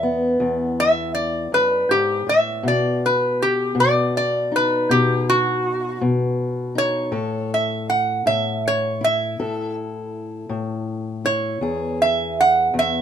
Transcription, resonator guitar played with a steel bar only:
0, 0, Header, 1, 2, 480
1, 0, Start_track
1, 0, Key_signature, 4, "major"
1, 0, Tempo, 748130
1, 1701, Time_signature, 12, 3, 24, 8
1, 8352, End_track
2, 0, Start_track
2, 0, Title_t, "Resonator guitar played with a steel bar"
2, 0, Program_c, 0, 25
2, 513, Note_on_c, 0, 76, 104
2, 732, Note_off_c, 0, 76, 0
2, 735, Note_on_c, 0, 74, 78
2, 970, Note_off_c, 0, 74, 0
2, 989, Note_on_c, 0, 71, 88
2, 1218, Note_off_c, 0, 71, 0
2, 1226, Note_on_c, 0, 67, 89
2, 1456, Note_off_c, 0, 67, 0
2, 1471, Note_on_c, 0, 76, 88
2, 1699, Note_off_c, 0, 76, 0
2, 1718, Note_on_c, 0, 74, 84
2, 1943, Note_off_c, 0, 74, 0
2, 1962, Note_on_c, 0, 71, 85
2, 2185, Note_off_c, 0, 71, 0
2, 2197, Note_on_c, 0, 67, 80
2, 2422, Note_off_c, 0, 67, 0
2, 2439, Note_on_c, 0, 74, 95
2, 2663, Note_off_c, 0, 74, 0
2, 2676, Note_on_c, 0, 74, 85
2, 2902, Note_off_c, 0, 74, 0
2, 2925, Note_on_c, 0, 71, 92
2, 3146, Note_off_c, 0, 71, 0
2, 3151, Note_on_c, 0, 67, 85
2, 3379, Note_off_c, 0, 67, 0
2, 3397, Note_on_c, 0, 66, 94
2, 3855, Note_off_c, 0, 66, 0
2, 4352, Note_on_c, 0, 73, 94
2, 4812, Note_off_c, 0, 73, 0
2, 4837, Note_on_c, 0, 76, 78
2, 5062, Note_off_c, 0, 76, 0
2, 5066, Note_on_c, 0, 78, 84
2, 5296, Note_off_c, 0, 78, 0
2, 5305, Note_on_c, 0, 76, 80
2, 5536, Note_off_c, 0, 76, 0
2, 5566, Note_on_c, 0, 73, 89
2, 5787, Note_off_c, 0, 73, 0
2, 5803, Note_on_c, 0, 76, 89
2, 6257, Note_off_c, 0, 76, 0
2, 7222, Note_on_c, 0, 73, 85
2, 7685, Note_off_c, 0, 73, 0
2, 7710, Note_on_c, 0, 76, 86
2, 7936, Note_off_c, 0, 76, 0
2, 7959, Note_on_c, 0, 78, 91
2, 8181, Note_off_c, 0, 78, 0
2, 8205, Note_on_c, 0, 76, 90
2, 8352, Note_off_c, 0, 76, 0
2, 8352, End_track
0, 0, End_of_file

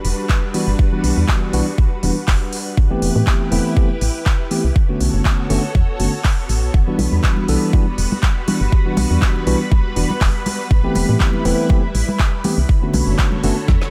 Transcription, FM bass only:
0, 0, Header, 1, 2, 480
1, 0, Start_track
1, 0, Key_signature, 1, "minor"
1, 0, Tempo, 495868
1, 766, Time_signature, 4, 2, 24, 8
1, 13458, End_track
2, 0, Start_track
2, 0, Title_t, "FM bass"
2, 0, Program_c, 0, 39
2, 45, Note_on_c, 0, 28, 91
2, 123, Note_off_c, 0, 28, 0
2, 653, Note_on_c, 0, 31, 84
2, 721, Note_off_c, 0, 31, 0
2, 1005, Note_on_c, 0, 35, 81
2, 1083, Note_off_c, 0, 35, 0
2, 1133, Note_on_c, 0, 40, 91
2, 1201, Note_off_c, 0, 40, 0
2, 1484, Note_on_c, 0, 35, 96
2, 1562, Note_off_c, 0, 35, 0
2, 1725, Note_on_c, 0, 33, 91
2, 1803, Note_off_c, 0, 33, 0
2, 1965, Note_on_c, 0, 28, 100
2, 2043, Note_off_c, 0, 28, 0
2, 2205, Note_on_c, 0, 28, 99
2, 2283, Note_off_c, 0, 28, 0
2, 2685, Note_on_c, 0, 33, 96
2, 2837, Note_off_c, 0, 33, 0
2, 2925, Note_on_c, 0, 28, 78
2, 3003, Note_off_c, 0, 28, 0
2, 3054, Note_on_c, 0, 45, 94
2, 3122, Note_off_c, 0, 45, 0
2, 3407, Note_on_c, 0, 28, 98
2, 3484, Note_off_c, 0, 28, 0
2, 3886, Note_on_c, 0, 33, 93
2, 3963, Note_off_c, 0, 33, 0
2, 4494, Note_on_c, 0, 36, 84
2, 4562, Note_off_c, 0, 36, 0
2, 4846, Note_on_c, 0, 35, 82
2, 4923, Note_off_c, 0, 35, 0
2, 4974, Note_on_c, 0, 30, 94
2, 5042, Note_off_c, 0, 30, 0
2, 5326, Note_on_c, 0, 30, 96
2, 5403, Note_off_c, 0, 30, 0
2, 5565, Note_on_c, 0, 40, 90
2, 5643, Note_off_c, 0, 40, 0
2, 5805, Note_on_c, 0, 30, 89
2, 5883, Note_off_c, 0, 30, 0
2, 6285, Note_on_c, 0, 33, 90
2, 6413, Note_on_c, 0, 35, 83
2, 6427, Note_off_c, 0, 33, 0
2, 6481, Note_off_c, 0, 35, 0
2, 6525, Note_on_c, 0, 28, 93
2, 6677, Note_off_c, 0, 28, 0
2, 6765, Note_on_c, 0, 35, 81
2, 6843, Note_off_c, 0, 35, 0
2, 6894, Note_on_c, 0, 40, 92
2, 6961, Note_off_c, 0, 40, 0
2, 7246, Note_on_c, 0, 35, 99
2, 7323, Note_off_c, 0, 35, 0
2, 7726, Note_on_c, 0, 28, 91
2, 7803, Note_off_c, 0, 28, 0
2, 8333, Note_on_c, 0, 31, 86
2, 8401, Note_off_c, 0, 31, 0
2, 8685, Note_on_c, 0, 35, 83
2, 8763, Note_off_c, 0, 35, 0
2, 8813, Note_on_c, 0, 40, 96
2, 8881, Note_off_c, 0, 40, 0
2, 9166, Note_on_c, 0, 35, 94
2, 9243, Note_off_c, 0, 35, 0
2, 9404, Note_on_c, 0, 33, 91
2, 9482, Note_off_c, 0, 33, 0
2, 9646, Note_on_c, 0, 28, 100
2, 9723, Note_off_c, 0, 28, 0
2, 9884, Note_on_c, 0, 28, 101
2, 9962, Note_off_c, 0, 28, 0
2, 10364, Note_on_c, 0, 33, 98
2, 10517, Note_off_c, 0, 33, 0
2, 10605, Note_on_c, 0, 28, 81
2, 10683, Note_off_c, 0, 28, 0
2, 10733, Note_on_c, 0, 45, 92
2, 10801, Note_off_c, 0, 45, 0
2, 11084, Note_on_c, 0, 28, 96
2, 11163, Note_off_c, 0, 28, 0
2, 11565, Note_on_c, 0, 33, 95
2, 11643, Note_off_c, 0, 33, 0
2, 12174, Note_on_c, 0, 36, 87
2, 12241, Note_off_c, 0, 36, 0
2, 12525, Note_on_c, 0, 35, 80
2, 12603, Note_off_c, 0, 35, 0
2, 12653, Note_on_c, 0, 30, 92
2, 12721, Note_off_c, 0, 30, 0
2, 13006, Note_on_c, 0, 30, 96
2, 13083, Note_off_c, 0, 30, 0
2, 13245, Note_on_c, 0, 40, 96
2, 13323, Note_off_c, 0, 40, 0
2, 13458, End_track
0, 0, End_of_file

